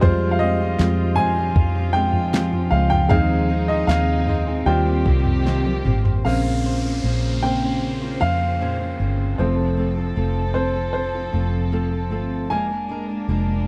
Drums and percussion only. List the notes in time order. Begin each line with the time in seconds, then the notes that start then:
0.02 kick, floor tom
0.79 snare
1.17 floor tom
1.56 kick
2.13 floor tom
2.34 snare
2.53 floor tom
2.91 floor tom
3.10 kick, floor tom
3.89 snare
4.28 floor tom
5.06 kick
5.25 floor tom
5.47 snare
5.66 high tom
5.86 mid tom
6.05 floor tom